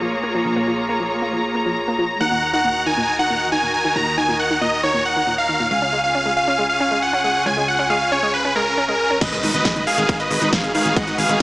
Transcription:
Already playing: fm bass A#1, string section A#3 F4 G#4 C#5 A#5
0.02 synth arpeggio sound F3
0.24 synth arpeggio sound A#3
0.35 synth arpeggio sound F3
0.45 fm bass A#1
0.56 synth arpeggio sound A#3
0.67 synth arpeggio sound F3
0.89 synth arpeggio sound A#3
1.00 synth arpeggio sound F3
1.22 synth arpeggio sound A#3
1.33 synth arpeggio sound F3
1.55 synth arpeggio sound A#3
1.66 synth arpeggio sound F3
1.88 synth arpeggio sound A#3
1.99 synth arpeggio sound F3
2.21 fm bass D#2, string section D#3 D#4 F#4 A#4, synth arpeggio sound D#3, digital synth lead F#5, supersaw synth F#5
2.31 synth arpeggio sound A#2
2.53 synth arpeggio sound D#3, digital synth lead F#5, supersaw synth F#5
2.64 synth arpeggio sound A#2
2.86 synth arpeggio sound D#3, supersaw synth G#5, digital synth lead G#5
2.97 synth arpeggio sound A#2
3.19 synth arpeggio sound D#3, digital synth lead F#5, supersaw synth F#5
3.30 synth arpeggio sound A#2
3.52 synth arpeggio sound D#3, supersaw synth G#5, digital synth lead G#5
3.63 synth arpeggio sound A#2
3.74 digital synth lead G#5, supersaw synth G#5
3.85 synth arpeggio sound D#3
3.96 fm bass D#2, synth arpeggio sound A#2, digital synth lead A#5, supersaw synth A#5
4.18 synth arpeggio sound D#3, digital synth lead G#5, supersaw synth G#5
4.29 synth arpeggio sound A#2
4.39 digital synth lead F#5, supersaw synth F#5
4.50 synth arpeggio sound D#3
4.61 synth arpeggio sound A#2, supersaw synth D#5, digital synth lead D#5
4.83 synth arpeggio sound D#3, digital synth lead C#5, supersaw synth C#5
4.94 synth arpeggio sound A#2
5.05 supersaw synth F#5, digital synth lead F#5
5.16 synth arpeggio sound D#3
5.27 synth arpeggio sound A#2
5.38 digital synth lead F5, supersaw synth F5
5.49 synth arpeggio sound D#3
5.60 synth arpeggio sound A#2
5.71 fm bass C#2, string section C#3 C#4 F4 G#4 G#5, digital synth lead F5, supersaw synth F5
5.82 synth arpeggio sound C#4
5.93 synth arpeggio sound G#3
6.04 supersaw synth F5, digital synth lead F5
6.15 synth arpeggio sound C#4
6.26 synth arpeggio sound G#3
6.37 digital synth lead F5, supersaw synth F5
6.48 synth arpeggio sound C#4
6.59 synth arpeggio sound G#3
6.69 supersaw synth F5, digital synth lead F5
6.80 synth arpeggio sound C#4
6.91 synth arpeggio sound G#3
7.02 supersaw synth F#5, digital synth lead F#5
7.13 synth arpeggio sound C#4
7.24 synth arpeggio sound G#3, supersaw synth F#5, digital synth lead F#5
7.46 fm bass C#2, synth arpeggio sound C#4, digital synth lead G#5, supersaw synth G#5
7.57 synth arpeggio sound G#3
7.68 digital synth lead F#5, supersaw synth F#5
7.79 synth arpeggio sound C#4
7.90 synth arpeggio sound G#3, digital synth lead F5, supersaw synth F5
8.12 synth arpeggio sound C#4, digital synth lead C#5, supersaw synth C#5
8.23 synth arpeggio sound G#3
8.34 digital synth lead B4, supersaw synth B4
8.45 synth arpeggio sound C#4
8.56 synth arpeggio sound G#3, digital synth lead A#4, supersaw synth A#4
8.78 synth arpeggio sound C#4
8.88 synth arpeggio sound G#3, digital synth lead A#4, supersaw synth A#4
9.10 synth arpeggio sound C#4
9.21 string section G#3 D#4 F#4 A#4 B4, supersaw synth B4 D#5, digital synth lead D#5, kick, closed hi-hat, crash, ride, impact
9.32 synth arpeggio sound G#3, closed hi-hat
9.43 fm bass G#1, synth arpeggio sound D#3, open hi-hat
9.54 fm bass G#1, supersaw synth B4 D#5, digital synth lead D#5, closed hi-hat
9.65 synth arpeggio sound G#3, kick, snare, closed hi-hat, ride
9.76 fm bass F#1, synth arpeggio sound D#3, closed hi-hat
9.87 supersaw synth G#4 F5, digital synth lead F5, open hi-hat
9.98 fm bass G#1, synth arpeggio sound G#3, closed hi-hat
10.09 synth arpeggio sound D#3, kick, closed hi-hat, ride
10.20 supersaw synth B4 D#5, digital synth lead D#5, closed hi-hat
10.31 fm bass G#1, synth arpeggio sound G#3, open hi-hat
10.42 fm bass G#1, synth arpeggio sound D#3, closed hi-hat
10.53 supersaw synth G#4 F5, digital synth lead F5, kick, snare, closed hi-hat, ride
10.64 fm bass G#1, synth arpeggio sound G#3, closed hi-hat
10.75 synth arpeggio sound D#3, supersaw synth G#4 F5, digital synth lead F5, open hi-hat
10.85 fm bass G#1, closed hi-hat
10.96 synth arpeggio sound G#3, string section G#4, supersaw synth D#5 F#5, digital synth lead F#5, kick, closed hi-hat, ride
11.07 synth arpeggio sound D#3, closed hi-hat
11.18 fm bass G#1, supersaw synth G#4 F5, digital synth lead F5, open hi-hat
11.29 fm bass G#1, synth arpeggio sound G#3, closed hi-hat

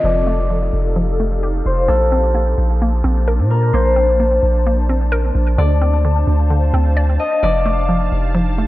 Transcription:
Already playing: ambient pad A4, harp D#5, downlifter
0.04 808-style bass F1, synth pluck F3, ambient pad D#4 G4 F5, harp D5
0.27 synth pluck A3
0.50 synth pluck F3
0.73 808-style bass F1
0.96 synth pluck F3
1.20 synth pluck A3
1.43 synth pluck G4
1.66 808-style bass F1, harp C5
1.88 808-style bass A#1, synth pluck A#3, ambient pad A#3 D4 C5 A5, harp A4
2.12 synth pluck C4
2.35 synth pluck A#3
2.58 808-style bass A#1
2.82 synth pluck A#3
3.04 808-style bass A#1, synth pluck C4
3.27 synth pluck A#4
3.39 808-style bass A#2
3.50 harp A#4
3.73 808-style bass A#1, synth pluck A#3, harp C5
3.96 synth pluck C4
4.20 synth pluck A#3
4.43 808-style bass A#1
4.66 synth pluck A#3
4.89 synth pluck C4
5.12 synth pluck A#4
5.35 808-style bass A#1
5.58 808-style bass D2, synth pluck D3, ambient pad C5 F5, harp D5
5.81 synth pluck C4
6.05 synth pluck D3
6.27 808-style bass D2
6.50 synth pluck D3
6.74 808-style bass D2, synth pluck C4
6.97 synth pluck D5
7.19 harp D#5
7.43 808-style bass F1, synth pluck F3, ambient pad D#4 G4, harp D5
7.65 synth pluck A3
7.89 synth pluck F3
8.12 808-style bass F1
8.35 synth pluck F3
8.58 synth pluck A3

